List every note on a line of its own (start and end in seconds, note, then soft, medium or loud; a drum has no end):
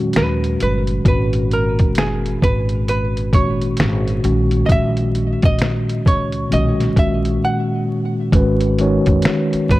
0.00 0.73 A#2 medium
0.00 0.74 D#3 medium
0.00 1.07 F#3 medium
0.00 0.77 G#3 medium
0.00 0.74 C#4 medium
0.00 0.75 F#4 medium
0.13 0.55 D#2 medium
0.13 0.61 B4 medium
0.13 finger snap medium
0.13 snare medium
0.13 closed hi-hat medium
0.44 closed hi-hat soft
0.60 1.00 G1 medium
0.60 1.07 B4 medium
0.60 closed hi-hat medium
0.87 closed hi-hat soft
1.04 1.80 G#1 loud
1.04 2.41 A#2 medium
1.04 2.41 D#3 medium
1.04 2.42 G#3 medium
1.04 2.42 C#4 medium
1.04 2.42 F#4 medium
1.04 1.53 B4 medium
1.04 kick loud
1.04 closed hi-hat medium
1.33 closed hi-hat soft
1.51 1.98 A#4 medium
1.51 closed hi-hat soft
1.79 2.34 F#1 medium
1.79 kick medium
1.79 closed hi-hat soft
1.95 2.43 G#4 medium
1.95 finger snap medium
1.95 snare loud
1.95 closed hi-hat medium
2.26 closed hi-hat soft
2.42 3.75 G#1 loud
2.42 2.88 B4 medium
2.42 kick medium
2.42 closed hi-hat medium
2.69 closed hi-hat soft
2.88 3.31 B4 medium
2.88 closed hi-hat medium
3.17 closed hi-hat soft
3.32 4.21 A#2 medium
3.32 4.22 D#3 medium
3.32 4.22 G#3 medium
3.32 4.23 C#4 medium
3.32 4.24 F#4 medium
3.32 4.66 C#5 medium
3.32 kick medium
3.32 closed hi-hat medium
3.61 closed hi-hat soft
3.77 4.18 G#1 medium
3.77 finger snap medium
3.77 snare loud
3.77 closed hi-hat medium
4.08 closed hi-hat soft
4.22 4.64 A#1 loud
4.22 5.71 A#2 medium
4.22 5.71 D#3 medium
4.22 5.71 G#3 medium
4.22 5.72 C#4 medium
4.22 5.72 F#4 medium
4.22 closed hi-hat medium
4.51 closed hi-hat soft
4.66 5.33 A#1 loud
4.66 4.70 D#5 medium
4.66 kick loud
4.66 closed hi-hat medium
4.72 5.45 E5 loud
4.97 closed hi-hat soft
5.15 closed hi-hat soft
5.42 5.98 A#1 medium
5.42 6.07 D#5 loud
5.42 kick loud
5.42 closed hi-hat soft
5.59 finger snap medium
5.59 snare loud
5.59 closed hi-hat medium
5.89 closed hi-hat medium
6.06 6.45 C#2 medium
6.06 6.53 C#5 medium
6.06 kick medium
6.06 closed hi-hat medium
6.32 closed hi-hat soft
6.49 6.91 B1 loud
6.49 6.89 A#2 medium
6.49 6.89 D#3 medium
6.49 6.89 G#3 medium
6.49 6.90 C#4 medium
6.49 6.90 F#4 medium
6.49 closed hi-hat medium
6.54 6.99 D#5 medium
6.80 snare soft
6.80 closed hi-hat soft
6.96 7.36 A#1 medium
6.96 8.01 A#2 medium
6.96 8.02 D#3 medium
6.96 8.02 G#3 medium
6.96 8.03 C#4 medium
6.96 8.03 F#4 medium
6.96 7.40 E5 medium
6.96 kick medium
6.96 closed hi-hat medium
7.25 closed hi-hat soft
7.45 8.13 F#5 medium
8.32 8.97 G#1 loud
8.32 8.69 D#3 medium
8.32 8.70 G#3 medium
8.32 8.70 C#4 medium
8.32 8.70 F#4 medium
8.32 8.71 B4 loud
8.32 kick loud
8.32 closed hi-hat medium
8.61 closed hi-hat medium
8.79 9.80 D#3 loud
8.79 9.80 G#3 medium
8.79 9.80 C#4 medium
8.79 9.80 F#4 medium
8.79 9.80 C#5 loud
8.79 closed hi-hat medium
9.06 9.22 F#1 loud
9.06 kick medium
9.06 closed hi-hat soft
9.22 finger snap medium
9.22 snare loud
9.22 closed hi-hat medium
9.53 muted upright bass stroke soft
9.53 closed hi-hat medium
9.69 9.80 G#1 medium
9.69 9.80 B4 medium
9.69 kick medium
9.69 closed hi-hat medium